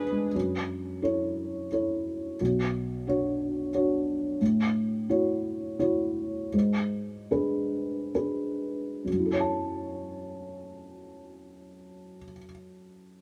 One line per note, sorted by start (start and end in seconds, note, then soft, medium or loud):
0.00 0.31 G#2 soft
0.00 0.12 G#3 soft
0.00 0.34 D4 soft
0.00 0.36 D4 soft
0.00 0.34 G#4 soft
0.00 0.37 G#4 soft
0.00 0.10 B4 soft
0.00 0.34 B4 soft
0.00 0.36 B4 soft
0.12 0.35 G#3 soft
0.35 1.01 F#2 soft
1.02 1.68 E4 soft
1.02 1.67 A4 soft
1.02 1.68 C#5 soft
1.72 2.36 E4 soft
1.72 2.36 A4 soft
1.72 2.36 C#5 soft
2.41 3.05 B1 soft
3.07 3.69 D4 soft
3.07 3.70 F#4 soft
3.07 3.70 C#5 soft
3.74 4.37 D4 soft
3.74 4.37 F#4 soft
3.74 4.37 C#5 soft
4.41 5.07 A2 soft
5.09 5.76 E4 soft
5.09 5.76 F#4 soft
5.09 5.76 C#5 soft
5.79 6.49 E4 soft
5.79 6.49 F#4 soft
5.79 6.49 C#5 soft
6.54 7.28 G#2 soft
7.31 8.11 D4 soft
7.31 8.11 G#4 soft
7.31 8.11 B4 soft
8.14 9.02 D4 soft
8.14 9.02 G#4 soft
8.14 9.02 B4 soft
9.05 12.15 F#2 soft
9.12 12.23 F#3 soft
9.19 12.30 E4 soft
9.26 12.36 A4 soft
9.33 12.44 C#5 soft
9.40 12.51 A5 soft